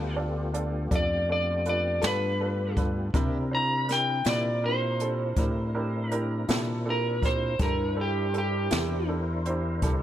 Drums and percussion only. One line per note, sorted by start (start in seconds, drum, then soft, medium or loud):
0.54 closed hi-hat soft
0.91 kick medium
0.91 closed hi-hat medium
1.66 closed hi-hat soft
2.02 snare medium
2.02 closed hi-hat medium
2.77 kick medium
2.77 closed hi-hat soft
3.14 kick medium
3.14 closed hi-hat medium
3.89 snare soft
3.89 closed hi-hat medium
4.25 snare medium
4.25 closed hi-hat medium
5.00 closed hi-hat soft
5.36 kick medium
5.36 closed hi-hat medium
6.11 closed hi-hat soft
6.49 snare medium
6.49 closed hi-hat medium
7.22 kick medium
7.22 snare soft
7.22 closed hi-hat soft
7.59 kick medium
7.59 closed hi-hat medium
8.34 closed hi-hat soft
8.71 snare medium
8.71 closed hi-hat medium
9.46 closed hi-hat soft
9.82 kick medium
9.82 closed hi-hat medium